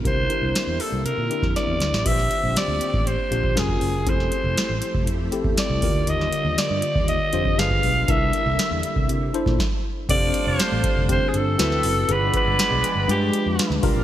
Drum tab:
CC |----------------|x---------------|----------------|----------------|
HH |x-x-x-o-x-x-x-x-|x-x-x-x-x-x-x-o-|x-x-x-x-x-x-x-o-|x-x-x-x-x-x-x-o-|
SD |----o------oo-oo|-o--o-------o---|-o--o-------o---|-o--o-------o---|
BD |o----------o----|o------o---o-o--|o------o---o--o-|-------o---o-o--|

CC |----------------|x---------------|----------------|
HH |x-x-x-x-x-x-----|x-x-x-x-x-x-x-o-|x-x-x-x-x-x-x-o-|
SD |----o------oo---|----o-------oo--|----o-------oo--|
BD |o------o---oo---|o-----o-o-------|--o-----------o-|